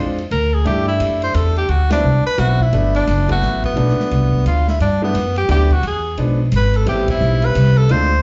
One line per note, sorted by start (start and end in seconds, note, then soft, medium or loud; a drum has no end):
0.00 0.30 F2 medium
0.00 0.16 G#3 soft
0.00 0.16 C4 soft
0.00 0.16 D4 medium
0.00 0.16 F4 medium
0.18 ride soft
0.31 0.65 D2 medium
0.31 0.56 A#4 medium
0.31 kick soft
0.31 ride medium
0.54 0.66 G#4 medium
0.65 0.99 G2 medium
0.65 1.61 A3 medium
0.65 1.61 D4 medium
0.65 1.62 E4 medium
0.65 1.61 G4 medium
0.65 0.87 G4 medium
0.65 kick soft
0.65 ride soft
0.88 1.20 E4 medium
1.00 1.34 F#2 medium
1.00 kick soft
1.00 hi-hat pedal medium
1.00 ride medium
1.22 1.37 C5 medium
1.22 ride soft
1.34 1.68 E2 medium
1.34 1.57 A4 medium
1.34 kick soft
1.34 hi-hat pedal soft
1.34 ride medium
1.56 1.71 G4 medium
1.56 ride soft
1.69 2.02 D2 medium
1.69 1.91 F#4 medium
1.69 kick soft
1.69 ride soft
1.90 2.02 F#3 medium
1.90 2.02 B3 medium
1.90 2.02 C4 medium
1.90 2.24 D4 medium
1.90 2.03 E4 medium
1.90 snare medium
1.90 ride medium
2.03 2.24 C2 medium
2.25 2.41 B4 loud
2.25 muted upright bass stroke soft
2.38 2.72 B1 medium
2.38 2.58 F#3 medium
2.38 2.58 B3 medium
2.38 2.58 C4 soft
2.38 2.58 E4 medium
2.38 2.63 F#4 medium
2.38 kick soft
2.38 snare soft
2.38 hi-hat pedal medium
2.38 ride medium
2.60 2.95 E4 medium
2.60 kick soft
2.73 3.06 G1 medium
2.73 3.25 F#3 medium
2.73 3.25 A3 medium
2.73 3.25 B3 medium
2.73 3.25 D4 medium
2.73 ride medium
2.95 3.28 D4 medium
2.95 ride soft
3.07 3.41 F#1 medium
3.07 kick soft
3.07 snare soft
3.07 hi-hat pedal medium
3.07 ride medium
3.28 3.73 F#3 medium
3.28 3.74 A3 medium
3.28 3.74 B3 medium
3.28 3.74 E4 medium
3.28 3.62 F#4 medium
3.28 kick medium
3.28 ride medium
3.42 3.75 A1 medium
3.42 kick soft
3.42 snare soft
3.42 hi-hat pedal soft
3.64 4.42 B3 medium
3.64 kick soft
3.64 ride soft
3.76 3.97 B1 medium
3.76 4.72 F#3 medium
3.76 4.72 A3 soft
3.76 4.72 B3 medium
3.76 4.72 D4 medium
3.76 kick soft
3.76 ride soft
3.89 snare soft
3.98 muted upright bass stroke soft
3.98 snare soft
4.11 4.44 C2 medium
4.11 kick soft
4.11 ride soft
4.33 kick soft
4.46 4.79 D2 medium
4.46 4.66 F4 medium
4.46 kick soft
4.46 hi-hat pedal medium
4.46 ride medium
4.68 4.80 E4 medium
4.68 snare soft
4.80 5.13 G2 medium
4.80 5.01 D4 medium
4.80 kick soft
4.80 ride soft
5.02 5.13 F#3 medium
5.02 5.13 A3 medium
5.02 5.13 B3 medium
5.02 5.35 B3 medium
5.02 5.13 D4 medium
5.14 5.48 F#2 medium
5.14 kick soft
5.14 hi-hat pedal medium
5.14 ride medium
5.36 5.49 G4 medium
5.36 ride soft
5.49 5.82 D2 medium
5.49 5.68 F#3 medium
5.49 5.68 A3 medium
5.49 5.69 B3 medium
5.49 5.69 D4 medium
5.49 5.74 G4 loud
5.49 kick soft
5.49 hi-hat pedal medium
5.49 ride medium
5.70 5.84 F#4 medium
5.70 kick medium
5.70 ride soft
5.83 6.17 E2 medium
5.83 kick soft
5.83 ride medium
5.87 6.17 G#4 medium
6.17 6.51 B1 medium
6.17 6.37 F3 medium
6.17 6.37 G#3 medium
6.17 6.37 B3 medium
6.17 6.38 D4 medium
6.17 kick soft
6.17 ride medium
6.52 6.85 G#1 medium
6.52 kick soft
6.52 hi-hat pedal medium
6.52 ride medium
6.56 6.78 B4 medium
6.74 6.88 A4 medium
6.74 ride soft
6.86 7.20 A1 medium
6.86 7.82 G3 medium
6.86 7.82 B3 medium
6.86 7.82 C4 medium
6.86 7.82 E4 medium
6.86 7.08 G4 medium
6.86 kick soft
6.86 ride medium
7.08 7.46 E4 medium
7.08 kick medium
7.08 ride medium
7.21 7.54 B1 medium
7.21 hi-hat pedal medium
7.42 7.79 B4 medium
7.42 ride soft
7.55 7.89 C2 medium
7.55 kick soft
7.55 hi-hat pedal medium
7.55 ride medium
7.78 7.93 A4 medium
7.89 8.22 D2 medium
7.89 8.09 G#3 medium
7.89 8.09 C4 medium
7.89 8.09 D4 medium
7.89 8.10 F4 medium
7.89 8.22 C5 medium
7.89 kick soft
7.89 ride medium